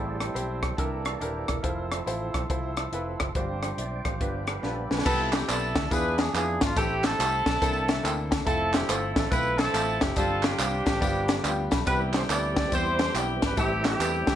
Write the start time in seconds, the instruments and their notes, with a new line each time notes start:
Already playing: fingered electric bass A1, grand piano A2 C4 E4 G4 A4 F5, tonewheel organ G3 C4 E4 G#4 A4 D5, accordion G5 A5 C6 E6
0.20 cross-stick, closed hi-hat
0.34 fingered electric bass B1, grand piano C4 E4 G4 C5, closed hi-hat
0.63 kick, cross-stick, closed hi-hat
0.77 fingered electric bass C2, grand piano C3 D4 E4 A4 A#4, tonewheel organ D3 A#3 D4 A4, accordion A#5 D6 E6, kick, closed hi-hat
0.83 tonewheel organ E3
1.05 tonewheel organ A4 D5, cross-stick, closed hi-hat
1.21 fingered electric bass D#1, grand piano D4 E4 A4 A#4, tonewheel organ G4 C5, closed hi-hat
1.48 fingered electric bass E1, tonewheel organ E4 A#4, kick, cross-stick, closed hi-hat
1.63 fingered electric bass F1, tonewheel organ F3 C4 E4 G#4, grand piano E4 F4 A4 C5, accordion C6, kick, closed hi-hat
1.68 tonewheel organ A4
1.92 cross-stick, closed hi-hat
2.06 fingered electric bass A1, grand piano E4 F4 A4 C5, closed hi-hat
2.34 fingered electric bass B1, kick, cross-stick, closed hi-hat
2.50 fingered electric bass C2, grand piano E4 F4 A4 C5, kick, closed hi-hat
2.77 cross-stick, closed hi-hat
2.92 fingered electric bass F1, grand piano E4 F4 A4 B4, closed hi-hat
3.20 fingered electric bass F#1, kick, cross-stick, closed hi-hat
3.35 fingered electric bass G1, grand piano G2 D4 F4 G4 C5, tonewheel organ F3 C4 D4 F#4, accordion G5 C6 D6, kick, closed hi-hat
3.40 tonewheel organ G4
3.63 cross-stick, closed hi-hat
3.78 fingered electric bass B1, tonewheel organ D5 G5, grand piano E5, closed hi-hat
4.05 fingered electric bass A1, tonewheel organ G4 C5, grand piano F5, kick, cross-stick, closed hi-hat
4.20 fingered electric bass G1, grand piano G2 D4 F4 G4 B4, tonewheel organ F3 B3 D4 G4, accordion G5 B5, kick, closed hi-hat
4.47 tonewheel organ B4 F5, cross-stick, closed hi-hat
4.63 fingered electric bass A#1, grand piano D4 F4 G4 B4, tonewheel organ A4 D5, snare
4.91 fingered electric bass B1, tonewheel organ F4 B4, snare
4.99 snare
5.05 fingered electric bass C2, grand piano C3 B3 C4 E4 G4 B4, horn section E4 A4, kick, crash, tambourine
5.33 horn section G4, snare, clap, closed hi-hat, tambourine
5.48 fingered electric bass B1, grand piano B3 C4 E4 G4 D5, horn section E4 A4, clap, closed hi-hat, tambourine
5.76 fingered electric bass D2, kick, snare, closed hi-hat, tambourine
5.91 fingered electric bass E2, grand piano E3 B3 D4 E4 F4 G#4, horn section D4 G#4 B4, kick, closed hi-hat, tambourine
6.18 horn section G#4, snare, closed hi-hat, tambourine
6.33 fingered electric bass F2, grand piano B3 D4 E4 F4 B4, horn section G#4, clap, closed hi-hat, tambourine
6.61 fingered electric bass G#1, horn section F4, kick, snare, closed hi-hat, tambourine
6.76 fingered electric bass A1, grand piano A2 A3 C4 E4 G4 A4, horn section C4 E4 G4, kick, closed hi-hat, tambourine
7.04 horn section C4 E4 A4, snare, clap, closed hi-hat, tambourine
7.19 fingered electric bass C2, grand piano A3 C4 E4 G4 A4, clap, closed hi-hat, tambourine
7.46 fingered electric bass B1, kick, snare, closed hi-hat, tambourine
7.61 fingered electric bass C2, grand piano C3 A#3 C4 D4 E4 A4, kick, closed hi-hat, tambourine
7.88 grand piano E5, snare, closed hi-hat, tambourine
8.03 fingered electric bass D2, grand piano A#3 C4 D4 E4 A4 G5, clap, closed hi-hat, tambourine
8.31 grand piano A5, kick, snare, closed hi-hat, tambourine
8.45 fingered electric bass F1, grand piano A3 C4 E4 F4 A4, horn section C4 E4 A4, kick, closed hi-hat, tambourine
8.73 horn section G4, snare, clap, closed hi-hat, tambourine
8.89 fingered electric bass G1, grand piano A3 C4 E4 F4 C5, horn section A4, clap, closed hi-hat, tambourine
9.16 fingered electric bass A1, horn section A4, kick, snare, closed hi-hat, tambourine
9.31 fingered electric bass B1, grand piano A3 C4 E4 F4 B4, horn section E4 B4, kick, closed hi-hat, tambourine
9.58 horn section C4 E4 A4, snare, closed hi-hat, tambourine
9.73 fingered electric bass A1, grand piano A3 C4 E4 F4 A4, clap, closed hi-hat, tambourine
10.01 fingered electric bass F#1, horn section G4, kick, snare, closed hi-hat, tambourine
10.16 fingered electric bass G1, grand piano G2 G3 C4 D4 F4 G4, horn section C4 F4 A4, kick, closed hi-hat, tambourine
10.43 horn section C4 D4 G4, snare, clap, closed hi-hat, tambourine
10.58 fingered electric bass C2, grand piano G3 C4 D4 F4 G4, clap, closed hi-hat, tambourine
10.86 fingered electric bass A1, kick, snare, closed hi-hat, tambourine
11.01 fingered electric bass G1, grand piano G2 G3 B3 D4 F4 G4, kick, closed hi-hat, tambourine
11.28 snare, closed hi-hat, tambourine
11.43 fingered electric bass D2, grand piano G3 B3 D4 F4 G4 G5, clap, closed hi-hat, tambourine
11.71 fingered electric bass B1, grand piano B5, kick, snare, closed hi-hat, tambourine
11.86 fingered electric bass C2, grand piano C3 G3 B3 C4 E4 G4, tonewheel organ D3 G3 C4 G4, horn section E4 G4 B4, kick, closed hi-hat, tambourine
11.92 tonewheel organ E3
12.13 horn section C5, snare, clap, closed hi-hat, tambourine
12.28 fingered electric bass D2, grand piano G3 B3 C4 E4 A4, horn section D5, clap, closed hi-hat, tambourine
12.56 horn section D5, kick, snare, closed hi-hat, tambourine
12.71 fingered electric bass E2, grand piano G3 B3 C4 E4 G4, horn section E4 G4 C5, kick, closed hi-hat, tambourine
12.99 snare, closed hi-hat, tambourine
13.14 fingered electric bass B1, grand piano G3 B3 C4 E4 G4, clap, closed hi-hat, tambourine
13.42 fingered electric bass G#1, horn section B4, kick, snare, closed hi-hat, tambourine
13.57 fingered electric bass A1, grand piano A2 A3 C4 E4 G4 A4, tonewheel organ E3 G3 A3 C4 G4, horn section C4 E4 G4, kick, closed hi-hat, tambourine
13.85 horn section C4 E4 G4, snare, clap, closed hi-hat, tambourine
13.99 fingered electric bass E2, grand piano A3 C4 E4 G4 B4, clap, closed hi-hat, tambourine
14.27 fingered electric bass D2, kick, snare, closed hi-hat, tambourine